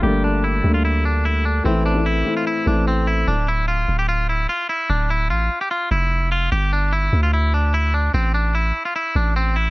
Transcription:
<<
  \new Staff \with { instrumentName = "Clean electric guitar" } { \time 4/4 \key g \dorian \tempo 4 = 148 g'8 d'8 e'8. f'16 e'8 d'8 e'8 d'8 | c'8 d'8 e'8. f'16 e'8 d'8 c'8 e'8 | d'8 e'8 f'8. g'16 f'8 e'8 f'8 e'8 | d'8 e'8 f'8. g'16 f'8 e'4 f'8 |
g'8 d'8 e'8. f'16 e'8 d'8 e'8 d'8 | c'8 d'8 e'8. f'16 e'8 d'8 c'8 e'8 | }
  \new Staff \with { instrumentName = "Grand piano" } { \time 4/4 \key g \dorian <g a bes d'>4~ <g a bes d'>16 r16 <g a bes d'>4. r4 | <e a c' e'>8 r16 <e a c' e'>8 r16 <e a c' e'>8. r16 <e a c' e'>4~ <e a c' e'>16 r16 | r1 | r1 |
r1 | r1 | }
  \new Staff \with { instrumentName = "808-style bass" } { \clef bass \time 4/4 \key g \dorian g,,4. d,2~ d,8 | a,,4. r4 a,,4. | d,,4. d,,4. r4 | d,,4 a,,8 r4 f,,4. |
g,,4. d,2~ d,8 | a,,4. r4 a,,4. | }
>>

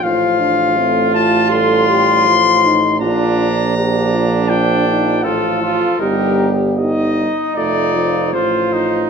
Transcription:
<<
  \new Staff \with { instrumentName = "Trumpet" } { \time 4/4 \key bes \major \tempo 4 = 80 f''4. a''8 c'''2 | bes''2 g''4 a'4 | bes'8 r8 ees''4 d''4 c''4 | }
  \new Staff \with { instrumentName = "French horn" } { \time 4/4 \key bes \major f'8 d'8 c'8 f'8 a'8 g'8 f'8 ees'8 | f'8 r8 g'8 f'8 d'8 ees'8 f'8 f'8 | g'4 ees'4 f'2 | }
  \new Staff \with { instrumentName = "Trumpet" } { \time 4/4 \key bes \major f'1 | d'4 d'2 f'8 f'8 | ees'8 r8 ees'2 f'8 ees'8 | }
  \new Staff \with { instrumentName = "Euphonium" } { \clef bass \time 4/4 \key bes \major f4 a4 g4 f4 | f1 | g4. r8 a8 f4. | }
  \new Staff \with { instrumentName = "Tuba" } { \clef bass \time 4/4 \key bes \major a,,1 | bes,,2. a,,4 | g,,4. r8 f,,4 a,,4 | }
>>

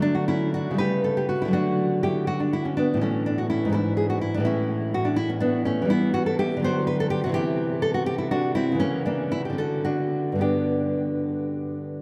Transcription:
\new Staff \with { instrumentName = "Nylon-string guitar" } { \time 6/8 \key d \major \tempo 4. = 82 << { d'16 fis'16 <cis' e'>8 <d' fis'>8 <g' b'>8 a'16 g'16 fis'16 e'16 | <d' fis'>4 <e' g'>8 fis'16 d'16 e'16 cis'16 <b d'>8 | <a cis'>8 d'16 fis'16 <cis' e'>8 <e' a'>8 gis'16 fis'16 e'16 d'16 | <cis' e'>4 fis'16 d'16 e'16 cis'16 <b d'>8 <a cis'>8 |
\key g \major <b e'>8 fis'16 a'16 <e' g'>8 <fis' c''>8 b'16 a'16 g'16 fis'16 | <e' g'>4 a'16 fis'16 g'16 e'16 <d' fis'>8 <c' e'>8 | <ais cis'>8 <ais d'>8 e'16 g'16 <fis' a'>8 <d' fis'>4 | <d' g'>2~ <d' g'>8 r8 | } \\ { <d fis a>4. <cis g a>4. | <d fis a>2. | <a, e>4. <gis, e d'>4. | <a, e>2. |
<e g>4. <d fis b>4. | <c e c'>2. | <cis e>4. <d c'>4. | <g, d b>2. | } >> }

